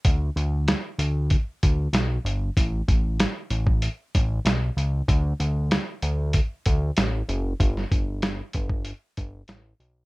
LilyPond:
<<
  \new Staff \with { instrumentName = "Analog synth bass" } { \clef bass \time 4/4 \key g \lydian \tempo 4 = 95 d,8 d,8. r16 d,8. r16 d,8 b,,8 g,,8 | a,,8 a,,8. r16 a,,8. r16 a,,8 b,,8 cis,8 | d,8 d,8. r16 d,8. r16 d,8 a,,8 fis,,8 | g,,8 g,,4 g,,8. r16 g,,8 a,,8 b,,8 | }
  \new DrumStaff \with { instrumentName = "Drums" } \drummode { \time 4/4 <hh bd>8 hh8 <hh sn>8 hh8 <hh bd>8 <hh bd>8 <hh sn>8 hh8 | <hh bd>8 <hh bd>8 <hh sn>8 hh16 bd16 hh8 <hh bd>8 <hh sn>8 hh8 | <hh bd>8 hh8 <hh sn>8 hh8 <hh bd>8 <hh bd>8 <hh sn>8 hh8 | <hh bd>16 sn16 <hh bd>8 <hh sn>8 <hh bd>16 bd16 hh8 <hh bd>8 <hh sn>8 hh8 | }
>>